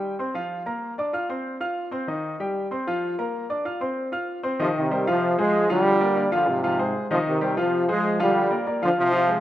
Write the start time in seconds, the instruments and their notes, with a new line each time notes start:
Already playing: grand piano G3 G4 G5
0.19 grand piano C4 C5 C6
0.34 grand piano F3 F4 F5
0.66 grand piano A#3 A#4 A#5
0.98 grand piano D4 D5 D6
1.13 grand piano F4 F5 F6
1.29 grand piano C4 C5 C6
1.60 grand piano F4 F5 F6
1.91 grand piano C4 C5 C6
2.08 grand piano D#3 D#4 D#5
2.40 grand piano G3 G4 G5
2.71 grand piano C4 C5 C6
2.87 grand piano F3 F4 F5
3.18 grand piano A#3 A#4 A#5
3.50 grand piano D4 D5 D6
3.65 grand piano F4 F5 F6
3.81 grand piano C4 C5 C6
4.12 grand piano F4 F5 F6
4.43 grand piano C4 C5 C6
4.59 trombone section C3 F3, grand piano D#3 D#4 D#5
4.78 trombone section C3 D#3
4.91 grand piano G3 G4 C5
5.07 trombone section C3 F3, grand piano F3 F4 F5
5.38 trombone section F3 G#3, grand piano G#3 G#4 C5
5.69 trombone section D3 G3, grand piano F3 F4 F5
6.01 grand piano A#3 A#4 D5
6.16 grand piano A#3 A#4 D5
6.32 trombone section D3 F3, grand piano F3 F4 F5
6.49 trombone section G#2 C3
6.64 grand piano F3 F4 F5
6.79 grand piano G#3 G#4 C5
7.11 trombone section C3 F3, grand piano D#3 D#4 D#5
7.27 trombone section C3 D#3
7.41 grand piano G3 G4 C5
7.57 trombone section C3 F3, grand piano F3 F4 F5
7.88 trombone section F3 G#3, grand piano G#3 G#4 C5
8.20 trombone section D3 G3, grand piano F3 F4 F5
8.51 grand piano A#3 A#4 D5
8.67 grand piano A#3 A#4 D5
8.82 trombone section D3 F3, grand piano F3 F4 F5
8.99 trombone section C3 F3
9.13 grand piano F3 F4 F5
9.28 grand piano G#3 G#4 C5